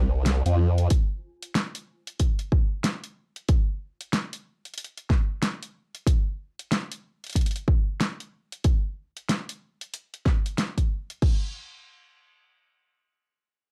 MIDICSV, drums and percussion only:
0, 0, Header, 1, 2, 480
1, 0, Start_track
1, 0, Tempo, 645161
1, 671, Time_signature, 4, 2, 24, 8
1, 10207, End_track
2, 0, Start_track
2, 0, Title_t, "Drums"
2, 192, Note_on_c, 9, 38, 113
2, 192, Note_on_c, 9, 42, 71
2, 266, Note_off_c, 9, 38, 0
2, 266, Note_off_c, 9, 42, 0
2, 341, Note_on_c, 9, 42, 36
2, 415, Note_off_c, 9, 42, 0
2, 581, Note_on_c, 9, 42, 34
2, 655, Note_off_c, 9, 42, 0
2, 672, Note_on_c, 9, 42, 74
2, 674, Note_on_c, 9, 36, 114
2, 746, Note_off_c, 9, 42, 0
2, 748, Note_off_c, 9, 36, 0
2, 1060, Note_on_c, 9, 42, 34
2, 1135, Note_off_c, 9, 42, 0
2, 1154, Note_on_c, 9, 38, 116
2, 1154, Note_on_c, 9, 42, 72
2, 1229, Note_off_c, 9, 38, 0
2, 1229, Note_off_c, 9, 42, 0
2, 1302, Note_on_c, 9, 42, 48
2, 1376, Note_off_c, 9, 42, 0
2, 1542, Note_on_c, 9, 42, 49
2, 1616, Note_off_c, 9, 42, 0
2, 1633, Note_on_c, 9, 42, 72
2, 1635, Note_on_c, 9, 36, 65
2, 1708, Note_off_c, 9, 42, 0
2, 1709, Note_off_c, 9, 36, 0
2, 1778, Note_on_c, 9, 42, 34
2, 1853, Note_off_c, 9, 42, 0
2, 1875, Note_on_c, 9, 36, 100
2, 1950, Note_off_c, 9, 36, 0
2, 2113, Note_on_c, 9, 38, 107
2, 2113, Note_on_c, 9, 42, 73
2, 2188, Note_off_c, 9, 38, 0
2, 2188, Note_off_c, 9, 42, 0
2, 2259, Note_on_c, 9, 42, 34
2, 2333, Note_off_c, 9, 42, 0
2, 2501, Note_on_c, 9, 42, 34
2, 2575, Note_off_c, 9, 42, 0
2, 2593, Note_on_c, 9, 42, 73
2, 2595, Note_on_c, 9, 36, 115
2, 2668, Note_off_c, 9, 42, 0
2, 2669, Note_off_c, 9, 36, 0
2, 2981, Note_on_c, 9, 42, 35
2, 3055, Note_off_c, 9, 42, 0
2, 3073, Note_on_c, 9, 38, 108
2, 3073, Note_on_c, 9, 42, 75
2, 3147, Note_off_c, 9, 38, 0
2, 3147, Note_off_c, 9, 42, 0
2, 3221, Note_on_c, 9, 42, 48
2, 3296, Note_off_c, 9, 42, 0
2, 3462, Note_on_c, 9, 42, 21
2, 3524, Note_off_c, 9, 42, 0
2, 3524, Note_on_c, 9, 42, 28
2, 3554, Note_off_c, 9, 42, 0
2, 3554, Note_on_c, 9, 42, 72
2, 3604, Note_off_c, 9, 42, 0
2, 3604, Note_on_c, 9, 42, 39
2, 3679, Note_off_c, 9, 42, 0
2, 3701, Note_on_c, 9, 42, 34
2, 3776, Note_off_c, 9, 42, 0
2, 3793, Note_on_c, 9, 36, 100
2, 3794, Note_on_c, 9, 38, 58
2, 3868, Note_off_c, 9, 36, 0
2, 3869, Note_off_c, 9, 38, 0
2, 4036, Note_on_c, 9, 38, 108
2, 4036, Note_on_c, 9, 42, 70
2, 4110, Note_off_c, 9, 38, 0
2, 4110, Note_off_c, 9, 42, 0
2, 4185, Note_on_c, 9, 42, 34
2, 4260, Note_off_c, 9, 42, 0
2, 4424, Note_on_c, 9, 42, 34
2, 4499, Note_off_c, 9, 42, 0
2, 4513, Note_on_c, 9, 36, 110
2, 4518, Note_on_c, 9, 42, 73
2, 4587, Note_off_c, 9, 36, 0
2, 4592, Note_off_c, 9, 42, 0
2, 4905, Note_on_c, 9, 42, 33
2, 4980, Note_off_c, 9, 42, 0
2, 4997, Note_on_c, 9, 38, 116
2, 4997, Note_on_c, 9, 42, 74
2, 5072, Note_off_c, 9, 38, 0
2, 5072, Note_off_c, 9, 42, 0
2, 5145, Note_on_c, 9, 42, 51
2, 5220, Note_off_c, 9, 42, 0
2, 5386, Note_on_c, 9, 42, 21
2, 5406, Note_off_c, 9, 42, 0
2, 5406, Note_on_c, 9, 42, 26
2, 5428, Note_off_c, 9, 42, 0
2, 5428, Note_on_c, 9, 42, 28
2, 5451, Note_off_c, 9, 42, 0
2, 5451, Note_on_c, 9, 42, 32
2, 5472, Note_on_c, 9, 36, 58
2, 5476, Note_off_c, 9, 42, 0
2, 5476, Note_on_c, 9, 42, 74
2, 5514, Note_off_c, 9, 42, 0
2, 5514, Note_on_c, 9, 42, 36
2, 5547, Note_off_c, 9, 36, 0
2, 5552, Note_off_c, 9, 42, 0
2, 5552, Note_on_c, 9, 42, 42
2, 5587, Note_off_c, 9, 42, 0
2, 5587, Note_on_c, 9, 42, 43
2, 5623, Note_off_c, 9, 42, 0
2, 5623, Note_on_c, 9, 42, 35
2, 5697, Note_off_c, 9, 42, 0
2, 5712, Note_on_c, 9, 36, 98
2, 5787, Note_off_c, 9, 36, 0
2, 5956, Note_on_c, 9, 38, 107
2, 5956, Note_on_c, 9, 42, 69
2, 6030, Note_off_c, 9, 38, 0
2, 6030, Note_off_c, 9, 42, 0
2, 6103, Note_on_c, 9, 42, 34
2, 6178, Note_off_c, 9, 42, 0
2, 6341, Note_on_c, 9, 42, 34
2, 6416, Note_off_c, 9, 42, 0
2, 6430, Note_on_c, 9, 42, 75
2, 6432, Note_on_c, 9, 36, 108
2, 6505, Note_off_c, 9, 42, 0
2, 6507, Note_off_c, 9, 36, 0
2, 6820, Note_on_c, 9, 42, 36
2, 6894, Note_off_c, 9, 42, 0
2, 6914, Note_on_c, 9, 38, 112
2, 6914, Note_on_c, 9, 42, 79
2, 6988, Note_off_c, 9, 38, 0
2, 6988, Note_off_c, 9, 42, 0
2, 7062, Note_on_c, 9, 42, 51
2, 7136, Note_off_c, 9, 42, 0
2, 7301, Note_on_c, 9, 42, 51
2, 7375, Note_off_c, 9, 42, 0
2, 7393, Note_on_c, 9, 42, 75
2, 7467, Note_off_c, 9, 42, 0
2, 7542, Note_on_c, 9, 42, 35
2, 7617, Note_off_c, 9, 42, 0
2, 7631, Note_on_c, 9, 36, 96
2, 7634, Note_on_c, 9, 38, 58
2, 7706, Note_off_c, 9, 36, 0
2, 7709, Note_off_c, 9, 38, 0
2, 7781, Note_on_c, 9, 42, 34
2, 7856, Note_off_c, 9, 42, 0
2, 7873, Note_on_c, 9, 38, 104
2, 7873, Note_on_c, 9, 42, 75
2, 7947, Note_off_c, 9, 38, 0
2, 7947, Note_off_c, 9, 42, 0
2, 8017, Note_on_c, 9, 36, 52
2, 8018, Note_on_c, 9, 42, 36
2, 8092, Note_off_c, 9, 36, 0
2, 8092, Note_off_c, 9, 42, 0
2, 8259, Note_on_c, 9, 42, 36
2, 8333, Note_off_c, 9, 42, 0
2, 8349, Note_on_c, 9, 36, 107
2, 8349, Note_on_c, 9, 49, 83
2, 8424, Note_off_c, 9, 36, 0
2, 8424, Note_off_c, 9, 49, 0
2, 10207, End_track
0, 0, End_of_file